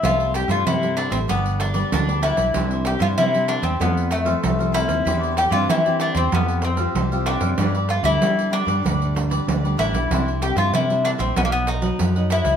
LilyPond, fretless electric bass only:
\new Staff \with { instrumentName = "Fretless electric bass" } { \clef bass \time 4/4 \key c \major \tempo 4 = 95 c,8. g,16 c8. a,,16 g,,4 d,8. b,,16 | c,8. g,16 c8. e,16 f,4 c,8. ees,16 | e,8. g,16 e8. e,16 f,4 c,8. fis,16 | g,8. d,16 g8. g,16 d,4 d,8 a,,16 b,,16 |
c,8. g,16 c8. bes,,16 b,,4 fis,8. des,16 | }